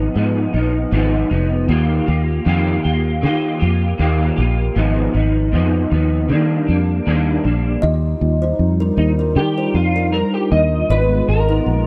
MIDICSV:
0, 0, Header, 1, 5, 480
1, 0, Start_track
1, 0, Key_signature, -3, "major"
1, 0, Tempo, 767263
1, 1057, Time_signature, 4, 2, 24, 8
1, 7425, End_track
2, 0, Start_track
2, 0, Title_t, "Kalimba"
2, 0, Program_c, 0, 108
2, 4893, Note_on_c, 0, 75, 90
2, 4900, Note_on_c, 0, 67, 69
2, 5123, Note_off_c, 0, 75, 0
2, 5127, Note_off_c, 0, 67, 0
2, 5267, Note_on_c, 0, 72, 71
2, 5271, Note_on_c, 0, 63, 56
2, 5371, Note_off_c, 0, 72, 0
2, 5373, Note_off_c, 0, 63, 0
2, 5507, Note_on_c, 0, 70, 70
2, 5512, Note_on_c, 0, 62, 57
2, 5611, Note_off_c, 0, 70, 0
2, 5613, Note_off_c, 0, 62, 0
2, 5750, Note_on_c, 0, 70, 73
2, 5754, Note_on_c, 0, 62, 55
2, 5852, Note_off_c, 0, 70, 0
2, 5854, Note_off_c, 0, 62, 0
2, 5991, Note_on_c, 0, 72, 71
2, 5998, Note_on_c, 0, 63, 52
2, 6093, Note_off_c, 0, 72, 0
2, 6096, Note_off_c, 0, 63, 0
2, 6231, Note_on_c, 0, 70, 74
2, 6234, Note_on_c, 0, 62, 59
2, 6332, Note_off_c, 0, 70, 0
2, 6334, Note_off_c, 0, 62, 0
2, 6822, Note_on_c, 0, 75, 93
2, 6826, Note_on_c, 0, 68, 78
2, 7047, Note_off_c, 0, 75, 0
2, 7049, Note_off_c, 0, 68, 0
2, 7187, Note_on_c, 0, 71, 71
2, 7191, Note_on_c, 0, 63, 54
2, 7290, Note_off_c, 0, 71, 0
2, 7292, Note_off_c, 0, 63, 0
2, 7425, End_track
3, 0, Start_track
3, 0, Title_t, "Analog synth pad"
3, 0, Program_c, 1, 89
3, 4895, Note_on_c, 1, 55, 78
3, 4896, Note_on_c, 1, 63, 72
3, 4897, Note_on_c, 1, 65, 80
3, 6796, Note_off_c, 1, 55, 0
3, 6796, Note_off_c, 1, 63, 0
3, 6818, Note_on_c, 1, 56, 78
3, 6820, Note_on_c, 1, 59, 88
3, 7425, Note_off_c, 1, 56, 0
3, 7425, Note_off_c, 1, 59, 0
3, 7425, Note_off_c, 1, 65, 0
3, 7425, End_track
4, 0, Start_track
4, 0, Title_t, "Clean electric guitar"
4, 0, Program_c, 2, 27
4, 0, Note_on_c, 2, 53, 47
4, 0, Note_on_c, 2, 59, 55
4, 0, Note_on_c, 2, 63, 59
4, 91, Note_on_c, 2, 44, 62
4, 92, Note_off_c, 2, 53, 0
4, 92, Note_off_c, 2, 63, 0
4, 99, Note_off_c, 2, 59, 0
4, 100, Note_on_c, 2, 53, 65
4, 108, Note_on_c, 2, 59, 65
4, 115, Note_on_c, 2, 63, 70
4, 323, Note_off_c, 2, 63, 0
4, 330, Note_on_c, 2, 63, 57
4, 334, Note_off_c, 2, 44, 0
4, 336, Note_off_c, 2, 59, 0
4, 338, Note_off_c, 2, 53, 0
4, 343, Note_on_c, 2, 59, 54
4, 354, Note_on_c, 2, 53, 44
4, 570, Note_off_c, 2, 53, 0
4, 572, Note_on_c, 2, 44, 86
4, 574, Note_off_c, 2, 63, 0
4, 576, Note_off_c, 2, 59, 0
4, 578, Note_on_c, 2, 53, 78
4, 584, Note_on_c, 2, 59, 79
4, 589, Note_on_c, 2, 63, 93
4, 804, Note_off_c, 2, 63, 0
4, 811, Note_on_c, 2, 63, 58
4, 815, Note_off_c, 2, 44, 0
4, 817, Note_off_c, 2, 59, 0
4, 818, Note_off_c, 2, 53, 0
4, 825, Note_on_c, 2, 59, 54
4, 835, Note_on_c, 2, 53, 49
4, 1053, Note_on_c, 2, 51, 75
4, 1055, Note_off_c, 2, 63, 0
4, 1056, Note_off_c, 2, 59, 0
4, 1059, Note_on_c, 2, 58, 86
4, 1064, Note_on_c, 2, 65, 83
4, 1066, Note_off_c, 2, 53, 0
4, 1070, Note_on_c, 2, 67, 85
4, 1282, Note_off_c, 2, 67, 0
4, 1290, Note_on_c, 2, 67, 57
4, 1295, Note_off_c, 2, 51, 0
4, 1297, Note_off_c, 2, 65, 0
4, 1298, Note_off_c, 2, 58, 0
4, 1304, Note_on_c, 2, 65, 50
4, 1316, Note_on_c, 2, 58, 44
4, 1533, Note_off_c, 2, 58, 0
4, 1533, Note_on_c, 2, 51, 80
4, 1534, Note_off_c, 2, 67, 0
4, 1537, Note_off_c, 2, 65, 0
4, 1541, Note_on_c, 2, 58, 80
4, 1545, Note_on_c, 2, 65, 78
4, 1550, Note_on_c, 2, 67, 91
4, 1764, Note_off_c, 2, 67, 0
4, 1772, Note_on_c, 2, 67, 53
4, 1776, Note_off_c, 2, 51, 0
4, 1779, Note_off_c, 2, 65, 0
4, 1780, Note_off_c, 2, 58, 0
4, 1786, Note_on_c, 2, 65, 51
4, 1797, Note_on_c, 2, 58, 46
4, 2010, Note_on_c, 2, 51, 66
4, 2012, Note_off_c, 2, 58, 0
4, 2015, Note_off_c, 2, 67, 0
4, 2020, Note_on_c, 2, 58, 64
4, 2021, Note_off_c, 2, 65, 0
4, 2028, Note_on_c, 2, 65, 72
4, 2034, Note_on_c, 2, 67, 73
4, 2242, Note_off_c, 2, 67, 0
4, 2250, Note_on_c, 2, 67, 54
4, 2255, Note_off_c, 2, 51, 0
4, 2257, Note_off_c, 2, 65, 0
4, 2259, Note_off_c, 2, 58, 0
4, 2264, Note_on_c, 2, 65, 54
4, 2276, Note_on_c, 2, 58, 46
4, 2490, Note_off_c, 2, 58, 0
4, 2492, Note_on_c, 2, 51, 77
4, 2494, Note_off_c, 2, 67, 0
4, 2496, Note_off_c, 2, 65, 0
4, 2498, Note_on_c, 2, 58, 79
4, 2503, Note_on_c, 2, 65, 81
4, 2508, Note_on_c, 2, 67, 87
4, 2720, Note_off_c, 2, 67, 0
4, 2727, Note_on_c, 2, 67, 57
4, 2735, Note_off_c, 2, 51, 0
4, 2735, Note_off_c, 2, 65, 0
4, 2738, Note_off_c, 2, 58, 0
4, 2742, Note_on_c, 2, 65, 53
4, 2752, Note_on_c, 2, 58, 52
4, 2973, Note_off_c, 2, 67, 0
4, 2973, Note_on_c, 2, 44, 84
4, 2979, Note_on_c, 2, 53, 84
4, 2981, Note_off_c, 2, 65, 0
4, 2982, Note_off_c, 2, 58, 0
4, 2985, Note_on_c, 2, 59, 81
4, 2989, Note_on_c, 2, 63, 87
4, 3205, Note_off_c, 2, 63, 0
4, 3213, Note_on_c, 2, 63, 57
4, 3216, Note_off_c, 2, 44, 0
4, 3218, Note_off_c, 2, 59, 0
4, 3219, Note_off_c, 2, 53, 0
4, 3226, Note_on_c, 2, 59, 47
4, 3237, Note_on_c, 2, 53, 44
4, 3452, Note_off_c, 2, 53, 0
4, 3453, Note_on_c, 2, 44, 82
4, 3456, Note_off_c, 2, 63, 0
4, 3458, Note_off_c, 2, 59, 0
4, 3460, Note_on_c, 2, 53, 77
4, 3466, Note_on_c, 2, 59, 81
4, 3472, Note_on_c, 2, 63, 87
4, 3684, Note_off_c, 2, 63, 0
4, 3692, Note_on_c, 2, 63, 56
4, 3696, Note_off_c, 2, 44, 0
4, 3699, Note_off_c, 2, 53, 0
4, 3699, Note_off_c, 2, 59, 0
4, 3707, Note_on_c, 2, 59, 54
4, 3717, Note_on_c, 2, 53, 50
4, 3932, Note_on_c, 2, 51, 63
4, 3935, Note_off_c, 2, 63, 0
4, 3939, Note_off_c, 2, 53, 0
4, 3942, Note_on_c, 2, 55, 65
4, 3943, Note_off_c, 2, 59, 0
4, 3950, Note_on_c, 2, 58, 72
4, 3957, Note_on_c, 2, 62, 68
4, 4164, Note_off_c, 2, 62, 0
4, 4171, Note_on_c, 2, 62, 52
4, 4176, Note_off_c, 2, 51, 0
4, 4178, Note_off_c, 2, 58, 0
4, 4180, Note_off_c, 2, 55, 0
4, 4186, Note_on_c, 2, 58, 55
4, 4197, Note_on_c, 2, 55, 45
4, 4415, Note_off_c, 2, 55, 0
4, 4415, Note_off_c, 2, 62, 0
4, 4416, Note_on_c, 2, 51, 75
4, 4419, Note_off_c, 2, 58, 0
4, 4422, Note_on_c, 2, 55, 81
4, 4426, Note_on_c, 2, 58, 86
4, 4431, Note_on_c, 2, 62, 86
4, 4645, Note_off_c, 2, 62, 0
4, 4653, Note_on_c, 2, 62, 55
4, 4657, Note_off_c, 2, 51, 0
4, 4660, Note_off_c, 2, 55, 0
4, 4661, Note_off_c, 2, 58, 0
4, 4668, Note_on_c, 2, 58, 49
4, 4677, Note_on_c, 2, 55, 52
4, 4895, Note_off_c, 2, 62, 0
4, 4903, Note_off_c, 2, 58, 0
4, 4908, Note_off_c, 2, 55, 0
4, 5618, Note_on_c, 2, 63, 77
4, 5683, Note_off_c, 2, 63, 0
4, 5858, Note_on_c, 2, 67, 95
4, 6099, Note_on_c, 2, 65, 83
4, 6105, Note_off_c, 2, 67, 0
4, 6334, Note_on_c, 2, 70, 97
4, 6345, Note_off_c, 2, 65, 0
4, 6466, Note_off_c, 2, 70, 0
4, 6468, Note_on_c, 2, 67, 81
4, 6577, Note_off_c, 2, 67, 0
4, 6580, Note_on_c, 2, 75, 99
4, 6819, Note_off_c, 2, 75, 0
4, 6822, Note_on_c, 2, 71, 103
4, 7058, Note_off_c, 2, 71, 0
4, 7061, Note_on_c, 2, 70, 91
4, 7425, Note_off_c, 2, 70, 0
4, 7425, End_track
5, 0, Start_track
5, 0, Title_t, "Fingered electric bass"
5, 0, Program_c, 3, 33
5, 97, Note_on_c, 3, 44, 83
5, 289, Note_off_c, 3, 44, 0
5, 337, Note_on_c, 3, 34, 79
5, 529, Note_off_c, 3, 34, 0
5, 576, Note_on_c, 3, 32, 87
5, 769, Note_off_c, 3, 32, 0
5, 818, Note_on_c, 3, 29, 82
5, 1055, Note_on_c, 3, 39, 103
5, 1065, Note_off_c, 3, 29, 0
5, 1248, Note_off_c, 3, 39, 0
5, 1301, Note_on_c, 3, 39, 93
5, 1492, Note_off_c, 3, 39, 0
5, 1540, Note_on_c, 3, 41, 90
5, 1731, Note_off_c, 3, 41, 0
5, 1783, Note_on_c, 3, 39, 81
5, 2022, Note_on_c, 3, 51, 88
5, 2031, Note_off_c, 3, 39, 0
5, 2213, Note_off_c, 3, 51, 0
5, 2264, Note_on_c, 3, 41, 77
5, 2454, Note_off_c, 3, 41, 0
5, 2499, Note_on_c, 3, 39, 88
5, 2691, Note_off_c, 3, 39, 0
5, 2740, Note_on_c, 3, 34, 85
5, 2932, Note_off_c, 3, 34, 0
5, 2978, Note_on_c, 3, 32, 94
5, 3170, Note_off_c, 3, 32, 0
5, 3218, Note_on_c, 3, 32, 81
5, 3459, Note_on_c, 3, 41, 74
5, 3469, Note_off_c, 3, 32, 0
5, 3651, Note_off_c, 3, 41, 0
5, 3701, Note_on_c, 3, 39, 85
5, 3938, Note_on_c, 3, 51, 89
5, 3947, Note_off_c, 3, 39, 0
5, 4130, Note_off_c, 3, 51, 0
5, 4183, Note_on_c, 3, 41, 78
5, 4373, Note_off_c, 3, 41, 0
5, 4422, Note_on_c, 3, 39, 74
5, 4612, Note_off_c, 3, 39, 0
5, 4659, Note_on_c, 3, 34, 80
5, 4851, Note_off_c, 3, 34, 0
5, 4898, Note_on_c, 3, 39, 103
5, 5090, Note_off_c, 3, 39, 0
5, 5138, Note_on_c, 3, 39, 91
5, 5330, Note_off_c, 3, 39, 0
5, 5375, Note_on_c, 3, 41, 83
5, 5568, Note_off_c, 3, 41, 0
5, 5613, Note_on_c, 3, 39, 89
5, 5854, Note_on_c, 3, 51, 98
5, 5864, Note_off_c, 3, 39, 0
5, 6047, Note_off_c, 3, 51, 0
5, 6095, Note_on_c, 3, 41, 83
5, 6393, Note_off_c, 3, 41, 0
5, 6579, Note_on_c, 3, 39, 91
5, 6770, Note_off_c, 3, 39, 0
5, 6817, Note_on_c, 3, 32, 102
5, 7009, Note_off_c, 3, 32, 0
5, 7059, Note_on_c, 3, 32, 93
5, 7250, Note_off_c, 3, 32, 0
5, 7296, Note_on_c, 3, 34, 80
5, 7425, Note_off_c, 3, 34, 0
5, 7425, End_track
0, 0, End_of_file